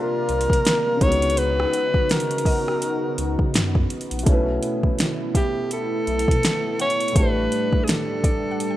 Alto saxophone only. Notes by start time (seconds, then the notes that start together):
Already playing: A#4
1.03 C#5
1.38 B4
2.11 A#4
5.37 G4
5.73 A4
6.81 C#5
7.16 B4
7.84 G#4
7.89 A4